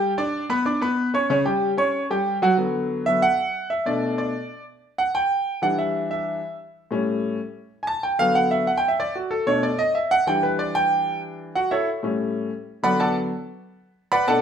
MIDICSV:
0, 0, Header, 1, 2, 480
1, 0, Start_track
1, 0, Key_signature, 2, "major"
1, 0, Tempo, 320513
1, 22, Time_signature, 4, 2, 24, 8
1, 21591, End_track
2, 0, Start_track
2, 0, Title_t, "Grand piano"
2, 0, Program_c, 0, 0
2, 0, Note_on_c, 0, 55, 85
2, 0, Note_on_c, 0, 67, 86
2, 0, Note_on_c, 0, 79, 93
2, 173, Note_off_c, 0, 55, 0
2, 176, Note_off_c, 0, 67, 0
2, 180, Note_off_c, 0, 79, 0
2, 265, Note_on_c, 0, 62, 80
2, 269, Note_on_c, 0, 74, 86
2, 271, Note_on_c, 0, 86, 82
2, 657, Note_off_c, 0, 62, 0
2, 659, Note_off_c, 0, 74, 0
2, 660, Note_off_c, 0, 86, 0
2, 742, Note_on_c, 0, 59, 87
2, 743, Note_on_c, 0, 71, 92
2, 749, Note_on_c, 0, 83, 89
2, 938, Note_off_c, 0, 59, 0
2, 939, Note_off_c, 0, 71, 0
2, 942, Note_off_c, 0, 83, 0
2, 979, Note_on_c, 0, 62, 77
2, 985, Note_on_c, 0, 74, 77
2, 989, Note_on_c, 0, 86, 77
2, 1177, Note_off_c, 0, 62, 0
2, 1180, Note_off_c, 0, 74, 0
2, 1182, Note_off_c, 0, 86, 0
2, 1219, Note_on_c, 0, 59, 84
2, 1223, Note_on_c, 0, 71, 85
2, 1233, Note_on_c, 0, 83, 79
2, 1613, Note_off_c, 0, 59, 0
2, 1615, Note_off_c, 0, 71, 0
2, 1621, Note_off_c, 0, 83, 0
2, 1705, Note_on_c, 0, 61, 82
2, 1714, Note_on_c, 0, 73, 88
2, 1717, Note_on_c, 0, 85, 83
2, 1900, Note_off_c, 0, 61, 0
2, 1905, Note_off_c, 0, 73, 0
2, 1907, Note_off_c, 0, 85, 0
2, 1944, Note_on_c, 0, 49, 95
2, 1948, Note_on_c, 0, 61, 89
2, 1953, Note_on_c, 0, 73, 91
2, 2139, Note_off_c, 0, 49, 0
2, 2141, Note_off_c, 0, 61, 0
2, 2145, Note_off_c, 0, 73, 0
2, 2176, Note_on_c, 0, 55, 82
2, 2180, Note_on_c, 0, 79, 75
2, 2181, Note_on_c, 0, 67, 76
2, 2571, Note_off_c, 0, 55, 0
2, 2573, Note_off_c, 0, 79, 0
2, 2574, Note_off_c, 0, 67, 0
2, 2658, Note_on_c, 0, 61, 80
2, 2667, Note_on_c, 0, 73, 82
2, 2669, Note_on_c, 0, 85, 88
2, 3052, Note_off_c, 0, 61, 0
2, 3057, Note_off_c, 0, 73, 0
2, 3059, Note_off_c, 0, 85, 0
2, 3150, Note_on_c, 0, 55, 80
2, 3155, Note_on_c, 0, 67, 82
2, 3159, Note_on_c, 0, 79, 83
2, 3539, Note_off_c, 0, 55, 0
2, 3542, Note_off_c, 0, 67, 0
2, 3545, Note_off_c, 0, 79, 0
2, 3625, Note_on_c, 0, 54, 85
2, 3632, Note_on_c, 0, 66, 88
2, 3637, Note_on_c, 0, 78, 87
2, 3820, Note_off_c, 0, 54, 0
2, 3823, Note_off_c, 0, 66, 0
2, 3826, Note_off_c, 0, 78, 0
2, 3854, Note_on_c, 0, 50, 57
2, 3864, Note_on_c, 0, 54, 56
2, 3870, Note_on_c, 0, 59, 65
2, 4540, Note_off_c, 0, 50, 0
2, 4545, Note_off_c, 0, 54, 0
2, 4549, Note_off_c, 0, 59, 0
2, 4577, Note_on_c, 0, 50, 49
2, 4582, Note_on_c, 0, 54, 46
2, 4584, Note_on_c, 0, 76, 102
2, 4589, Note_on_c, 0, 59, 57
2, 4794, Note_off_c, 0, 50, 0
2, 4797, Note_off_c, 0, 54, 0
2, 4801, Note_off_c, 0, 59, 0
2, 4814, Note_off_c, 0, 76, 0
2, 4828, Note_on_c, 0, 78, 101
2, 5493, Note_off_c, 0, 78, 0
2, 5542, Note_on_c, 0, 76, 87
2, 5774, Note_off_c, 0, 76, 0
2, 5774, Note_on_c, 0, 47, 56
2, 5785, Note_on_c, 0, 74, 80
2, 5787, Note_on_c, 0, 57, 52
2, 5793, Note_on_c, 0, 62, 64
2, 6229, Note_off_c, 0, 74, 0
2, 6263, Note_on_c, 0, 74, 77
2, 6461, Note_off_c, 0, 47, 0
2, 6468, Note_off_c, 0, 57, 0
2, 6471, Note_off_c, 0, 62, 0
2, 6931, Note_off_c, 0, 74, 0
2, 7464, Note_on_c, 0, 78, 91
2, 7695, Note_off_c, 0, 78, 0
2, 7708, Note_on_c, 0, 79, 99
2, 8374, Note_off_c, 0, 79, 0
2, 8415, Note_on_c, 0, 52, 59
2, 8426, Note_on_c, 0, 55, 55
2, 8426, Note_on_c, 0, 78, 92
2, 8435, Note_on_c, 0, 62, 66
2, 8656, Note_off_c, 0, 78, 0
2, 8663, Note_on_c, 0, 76, 74
2, 9108, Note_off_c, 0, 76, 0
2, 9147, Note_on_c, 0, 76, 82
2, 9558, Note_off_c, 0, 52, 0
2, 9563, Note_off_c, 0, 55, 0
2, 9568, Note_off_c, 0, 62, 0
2, 9813, Note_off_c, 0, 76, 0
2, 10343, Note_on_c, 0, 45, 61
2, 10353, Note_on_c, 0, 55, 57
2, 10361, Note_on_c, 0, 61, 69
2, 11026, Note_off_c, 0, 45, 0
2, 11031, Note_off_c, 0, 55, 0
2, 11036, Note_off_c, 0, 61, 0
2, 11723, Note_on_c, 0, 80, 64
2, 11758, Note_off_c, 0, 80, 0
2, 11790, Note_on_c, 0, 81, 92
2, 12018, Note_off_c, 0, 81, 0
2, 12029, Note_on_c, 0, 79, 89
2, 12258, Note_off_c, 0, 79, 0
2, 12262, Note_on_c, 0, 50, 62
2, 12266, Note_on_c, 0, 54, 52
2, 12269, Note_on_c, 0, 77, 105
2, 12281, Note_on_c, 0, 59, 64
2, 12498, Note_off_c, 0, 77, 0
2, 12508, Note_on_c, 0, 78, 93
2, 12737, Note_off_c, 0, 78, 0
2, 12745, Note_on_c, 0, 76, 88
2, 12946, Note_off_c, 0, 50, 0
2, 12948, Note_off_c, 0, 54, 0
2, 12956, Note_off_c, 0, 59, 0
2, 12976, Note_off_c, 0, 76, 0
2, 12988, Note_on_c, 0, 78, 78
2, 13140, Note_off_c, 0, 78, 0
2, 13141, Note_on_c, 0, 79, 97
2, 13297, Note_off_c, 0, 79, 0
2, 13304, Note_on_c, 0, 76, 84
2, 13458, Note_off_c, 0, 76, 0
2, 13474, Note_on_c, 0, 74, 88
2, 13701, Note_off_c, 0, 74, 0
2, 13709, Note_on_c, 0, 66, 63
2, 13937, Note_on_c, 0, 69, 84
2, 13938, Note_off_c, 0, 66, 0
2, 14172, Note_off_c, 0, 69, 0
2, 14175, Note_on_c, 0, 47, 59
2, 14181, Note_on_c, 0, 73, 99
2, 14183, Note_on_c, 0, 57, 57
2, 14189, Note_on_c, 0, 62, 71
2, 14414, Note_off_c, 0, 73, 0
2, 14423, Note_on_c, 0, 74, 84
2, 14497, Note_off_c, 0, 47, 0
2, 14501, Note_off_c, 0, 57, 0
2, 14505, Note_off_c, 0, 62, 0
2, 14655, Note_off_c, 0, 74, 0
2, 14656, Note_on_c, 0, 75, 96
2, 14891, Note_off_c, 0, 75, 0
2, 14899, Note_on_c, 0, 76, 82
2, 15133, Note_off_c, 0, 76, 0
2, 15144, Note_on_c, 0, 78, 109
2, 15376, Note_off_c, 0, 78, 0
2, 15377, Note_on_c, 0, 52, 60
2, 15384, Note_on_c, 0, 55, 57
2, 15388, Note_on_c, 0, 79, 98
2, 15395, Note_on_c, 0, 62, 66
2, 15618, Note_off_c, 0, 79, 0
2, 15621, Note_on_c, 0, 71, 71
2, 15854, Note_off_c, 0, 71, 0
2, 15860, Note_on_c, 0, 74, 88
2, 16094, Note_off_c, 0, 74, 0
2, 16099, Note_on_c, 0, 79, 112
2, 16770, Note_off_c, 0, 79, 0
2, 17240, Note_off_c, 0, 52, 0
2, 17243, Note_off_c, 0, 55, 0
2, 17249, Note_off_c, 0, 62, 0
2, 17304, Note_on_c, 0, 78, 86
2, 17313, Note_on_c, 0, 66, 69
2, 17536, Note_off_c, 0, 78, 0
2, 17539, Note_on_c, 0, 76, 88
2, 17540, Note_off_c, 0, 66, 0
2, 17544, Note_on_c, 0, 69, 68
2, 17545, Note_on_c, 0, 64, 67
2, 17549, Note_on_c, 0, 73, 71
2, 17773, Note_off_c, 0, 76, 0
2, 17776, Note_off_c, 0, 64, 0
2, 17776, Note_off_c, 0, 69, 0
2, 17778, Note_off_c, 0, 73, 0
2, 18014, Note_on_c, 0, 45, 57
2, 18022, Note_on_c, 0, 55, 53
2, 18031, Note_on_c, 0, 61, 67
2, 18702, Note_off_c, 0, 45, 0
2, 18706, Note_off_c, 0, 55, 0
2, 18711, Note_off_c, 0, 61, 0
2, 19211, Note_on_c, 0, 50, 59
2, 19222, Note_on_c, 0, 54, 56
2, 19223, Note_on_c, 0, 83, 100
2, 19227, Note_on_c, 0, 59, 66
2, 19228, Note_on_c, 0, 71, 81
2, 19228, Note_on_c, 0, 78, 87
2, 19229, Note_on_c, 0, 74, 80
2, 19452, Note_off_c, 0, 74, 0
2, 19455, Note_off_c, 0, 83, 0
2, 19456, Note_off_c, 0, 78, 0
2, 19458, Note_off_c, 0, 71, 0
2, 19466, Note_on_c, 0, 81, 85
2, 19474, Note_on_c, 0, 69, 77
2, 19475, Note_on_c, 0, 74, 75
2, 19478, Note_on_c, 0, 78, 69
2, 19697, Note_off_c, 0, 81, 0
2, 19701, Note_off_c, 0, 69, 0
2, 19701, Note_off_c, 0, 74, 0
2, 19703, Note_off_c, 0, 78, 0
2, 19900, Note_off_c, 0, 50, 0
2, 19906, Note_off_c, 0, 54, 0
2, 19908, Note_off_c, 0, 59, 0
2, 21140, Note_on_c, 0, 83, 108
2, 21147, Note_on_c, 0, 74, 86
2, 21148, Note_on_c, 0, 71, 80
2, 21149, Note_on_c, 0, 78, 83
2, 21363, Note_off_c, 0, 78, 0
2, 21367, Note_off_c, 0, 74, 0
2, 21373, Note_off_c, 0, 83, 0
2, 21373, Note_on_c, 0, 47, 55
2, 21377, Note_off_c, 0, 71, 0
2, 21380, Note_on_c, 0, 57, 54
2, 21382, Note_on_c, 0, 81, 101
2, 21385, Note_on_c, 0, 69, 86
2, 21385, Note_on_c, 0, 78, 87
2, 21389, Note_on_c, 0, 74, 78
2, 21390, Note_on_c, 0, 62, 59
2, 21526, Note_off_c, 0, 81, 0
2, 21528, Note_off_c, 0, 69, 0
2, 21528, Note_off_c, 0, 78, 0
2, 21531, Note_off_c, 0, 74, 0
2, 21591, Note_off_c, 0, 47, 0
2, 21591, Note_off_c, 0, 57, 0
2, 21591, Note_off_c, 0, 62, 0
2, 21591, End_track
0, 0, End_of_file